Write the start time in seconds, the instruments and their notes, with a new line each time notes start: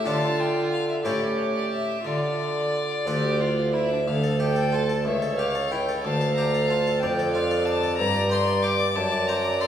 0.06 harpsichord D3 D4 F4 A4, bassoon D3, violin F4 A5
0.40 violin G5
0.72 violin F5
0.89 violin E5
1.04 harpsichord A2 C#4 G4 A4, bassoon A2, violin G4 D5
1.37 violin C#5
1.55 violin D5
1.71 violin E5
2.05 harpsichord D3, bassoon D3, violin F4 D5
3.07 harpsichord D2 D4 F4 A4, bassoon D2, violin G4
3.41 violin F4
3.74 violin E4 E5
3.92 violin D4
4.08 harpsichord D2, bassoon D2, violin A4 F5
4.24 harpsichord A4
4.40 harpsichord G4, violin G5
4.56 harpsichord A4
4.72 harpsichord F4, violin A5
4.89 harpsichord A4
5.05 harpsichord C#2, bassoon C#2, violin C#5 E5
5.22 harpsichord A4
5.38 harpsichord G4, violin F5
5.55 harpsichord A4
5.71 harpsichord E4, violin G5
5.89 harpsichord A4
6.04 harpsichord D2, bassoon D2, violin F5 A5
6.21 harpsichord A4
6.36 harpsichord G4, violin A#5
6.54 harpsichord A4
6.68 harpsichord F4, violin A5
6.87 harpsichord A4
7.00 bassoon F2, harpsichord F2 D5, violin D5 G5
7.19 harpsichord A4
7.33 harpsichord F4, violin F5
7.51 harpsichord A4
7.65 harpsichord D5, violin A5
7.83 harpsichord A4
7.98 harpsichord G2, bassoon G2, violin D5 A#5
8.15 harpsichord D5
8.31 harpsichord C5, violin C6
8.48 harpsichord D5
8.63 harpsichord G4, violin D6
8.80 harpsichord D5
8.96 harpsichord F#2, bassoon F#2, violin D5 A5
9.12 harpsichord D5
9.28 harpsichord C5, violin A#5
9.45 harpsichord D5
9.61 harpsichord A4, violin C6